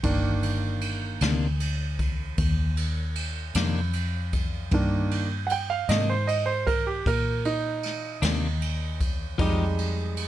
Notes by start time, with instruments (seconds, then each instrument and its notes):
0.03 fingered electric bass G1, grand piano D#3 A#3 D4, kick, ride
0.43 ride
0.81 ride
1.21 fingered electric bass D2, clean electric guitar C3 D#3 A#3 D4, snare, ride
1.60 ride
1.99 kick, ride
2.38 fingered electric bass D#2, kick, ride
2.77 ride
3.15 ride
3.54 fingered electric bass F2, clean electric guitar C3 D#3 A#3 D4, snare, ride
3.93 ride
4.33 kick, ride
4.71 fingered electric bass G2, grand piano D#3 A#3 D4, kick, ride
5.11 ride
5.47 grand piano F#5, ride
5.51 grand piano G5
5.70 grand piano F5
5.89 fingered electric bass G#2, clean electric guitar C3 D#3 A#3 D4, grand piano D#5, snare, ride
6.09 grand piano C5
6.27 grand piano D#5, ride
6.46 grand piano C5
6.67 grand piano A#4, kick, ride
6.87 grand piano G4
7.06 fingered electric bass A#2, grand piano A#4, kick, ride
7.45 grand piano D#4, ride
7.83 snare, ride
8.22 fingered electric bass D#2, clean electric guitar C3 D#3 A#3 D4, snare, ride
8.62 ride
9.00 kick, ride
9.38 fingered electric bass F2, clean electric guitar F3 G#3 D#4 G4, grand piano G3 G#3 D#4, kick, ride
9.78 ride
10.17 ride